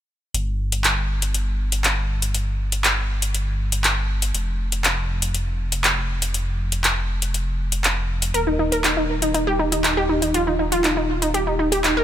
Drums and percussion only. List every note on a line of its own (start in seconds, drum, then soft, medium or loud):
0.34 closed hi-hat soft
0.72 closed hi-hat medium
0.84 clap loud
0.84 closed hi-hat medium
1.22 closed hi-hat medium
1.34 closed hi-hat medium
1.72 closed hi-hat medium
1.84 clap loud
1.84 closed hi-hat soft
2.22 closed hi-hat medium
2.34 closed hi-hat soft
2.72 closed hi-hat medium
2.84 clap loud
2.84 closed hi-hat medium
3.22 closed hi-hat medium
3.34 closed hi-hat soft
3.72 closed hi-hat medium
3.84 clap loud
3.84 closed hi-hat soft
4.22 closed hi-hat medium
4.35 closed hi-hat soft
4.72 closed hi-hat medium
4.84 clap loud
4.84 closed hi-hat soft
5.22 closed hi-hat medium
5.34 closed hi-hat soft
5.72 closed hi-hat medium
5.84 clap loud
5.84 closed hi-hat soft
6.22 closed hi-hat medium
6.34 closed hi-hat soft
6.72 closed hi-hat medium
6.84 clap loud
6.84 closed hi-hat soft
7.22 closed hi-hat medium
7.34 closed hi-hat soft
7.72 closed hi-hat medium
7.84 clap loud
7.84 closed hi-hat soft
8.22 closed hi-hat medium
8.34 closed hi-hat soft
8.72 closed hi-hat medium
8.84 clap loud
8.84 closed hi-hat soft
9.22 closed hi-hat medium
9.34 closed hi-hat soft
9.72 closed hi-hat medium
9.84 clap loud
9.84 closed hi-hat soft
10.22 closed hi-hat medium
10.34 closed hi-hat soft
10.72 closed hi-hat medium
10.84 clap loud
10.84 closed hi-hat soft
11.22 closed hi-hat medium
11.34 closed hi-hat soft
11.72 closed hi-hat medium
11.84 clap loud
11.84 closed hi-hat soft